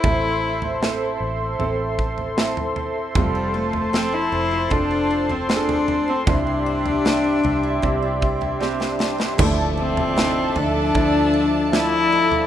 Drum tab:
CC |----------------|----------------|----------------|x---------------|
SD |----o-------o---|----o-------o---|----o-------oooo|----o-------o---|
FT |o--o----o--o-oo-|o--o----o--o-oo-|o--o--o-o--o----|o--o--o-o------o|
BD |o---------o-----|o-------o-------|o-------o-o-----|o-------o-------|